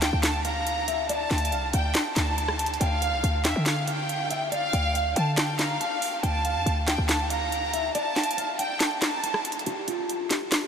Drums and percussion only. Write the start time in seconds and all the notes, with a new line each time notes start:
0.02 snare, clap, closed hi-hat
0.23 snare, clap, closed hi-hat
0.45 closed hi-hat
0.67 closed hi-hat
0.88 closed hi-hat
1.09 closed hi-hat
1.31 snare, closed hi-hat
1.38 closed hi-hat
1.45 closed hi-hat
1.52 closed hi-hat
1.73 closed hi-hat
1.95 snare, clap, closed hi-hat
2.16 snare, clap, closed hi-hat
2.38 closed hi-hat
2.48 cross-stick
2.59 closed hi-hat, open hi-hat
2.66 closed hi-hat
2.74 closed hi-hat
2.81 closed hi-hat
3.02 closed hi-hat
3.24 closed hi-hat
3.45 snare, clap, closed hi-hat
3.66 snare, clap, closed hi-hat
3.88 closed hi-hat
4.09 closed hi-hat
4.31 closed hi-hat
4.52 closed hi-hat
4.73 closed hi-hat
4.95 closed hi-hat
5.16 closed hi-hat
5.37 snare, clap, closed hi-hat
5.59 snare, clap, closed hi-hat
5.81 closed hi-hat
6.02 open hi-hat
6.23 closed hi-hat
6.45 closed hi-hat
6.67 closed hi-hat
6.88 snare, clap, closed hi-hat
7.09 snare, clap, closed hi-hat
7.30 closed hi-hat
7.52 closed hi-hat
7.74 closed hi-hat
7.95 closed hi-hat
8.16 snare, closed hi-hat
8.23 closed hi-hat
8.31 closed hi-hat
8.38 closed hi-hat
8.59 closed hi-hat
8.80 snare, clap, closed hi-hat
9.02 snare, clap, closed hi-hat
9.24 closed hi-hat
9.34 cross-stick
9.45 closed hi-hat, open hi-hat
9.52 closed hi-hat
9.59 closed hi-hat
9.66 closed hi-hat
9.88 closed hi-hat
10.09 closed hi-hat
10.31 snare, clap, closed hi-hat
10.52 snare, clap, closed hi-hat